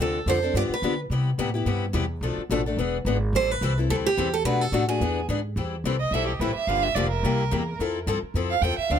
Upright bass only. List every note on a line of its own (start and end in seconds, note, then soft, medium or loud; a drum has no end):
0.00 0.25 D2 medium
0.26 0.53 F2 medium
0.54 0.69 G2 medium
0.69 muted upright bass stroke soft
0.82 1.09 D3 medium
1.10 1.37 C3 medium
1.38 1.65 A2 medium
1.66 1.93 G2 medium
1.94 2.20 E2 medium
2.21 2.36 B1 medium
2.37 muted upright bass stroke soft
2.50 2.76 A1 medium
2.77 3.04 E1 medium
3.05 3.32 G#1 medium
3.33 3.60 A1 medium
3.61 3.88 C2 medium
3.89 4.16 D2 medium
4.17 4.44 E2 medium
4.44 4.72 B2 medium
4.72 4.99 A2 medium
5.00 5.28 E2 medium
5.28 5.55 G#2 medium
5.56 5.83 E2 medium
5.84 6.10 C2 medium
6.11 6.39 B1 medium
6.40 6.54 A1 medium
6.55 muted upright bass stroke soft
6.67 6.94 G1 medium
6.95 7.23 F1 medium
7.23 7.50 C2 medium
7.52 7.79 E2 loud
7.79 8.06 F2 medium
8.07 8.21 G2 medium
8.23 muted upright bass stroke soft
8.34 8.61 F2 medium
8.62 8.77 E2 medium
8.78 muted upright bass stroke soft
8.90 8.99 D2 medium